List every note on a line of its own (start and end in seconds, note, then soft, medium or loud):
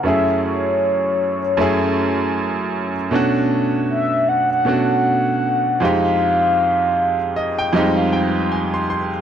0.03 1.39 F#2 medium
0.03 1.39 A3 medium
0.03 1.40 C#4 medium
0.03 1.40 E4 medium
0.03 0.41 E5 loud
0.08 1.41 G#4 medium
0.45 2.71 C#5 loud
1.57 2.92 F#2 medium
1.57 2.93 A3 medium
1.57 2.94 C#4 medium
1.57 2.94 E4 medium
1.61 2.95 G#4 medium
3.11 4.46 B2 medium
3.11 4.47 A3 medium
3.11 4.47 C#4 medium
3.11 4.48 D4 medium
3.15 4.49 F#4 medium
3.90 4.30 E5 loud
4.28 4.50 F#5 loud
4.50 5.84 F#5 loud
4.65 5.81 B2 medium
4.65 5.81 A3 medium
4.65 5.82 C#4 medium
4.65 5.83 D4 medium
4.69 5.83 F#4 medium
5.80 7.16 F2 medium
5.80 7.16 G#3 medium
5.80 7.17 C4 medium
5.80 7.17 D#4 medium
5.80 8.51 F5 loud
5.85 7.18 G4 medium
7.36 7.57 D#5 medium
7.59 7.73 G5 medium
7.73 9.08 F2 medium
7.73 7.81 G3 medium
7.73 9.09 C4 medium
7.73 9.10 D#4 medium
7.73 7.95 D#5 medium
7.77 9.12 G#3 medium
7.77 9.10 G4 medium
7.97 8.12 F5 medium
8.13 8.48 G5 medium
8.52 8.72 G#5 medium
8.74 8.88 C6 medium
8.90 9.21 C6 medium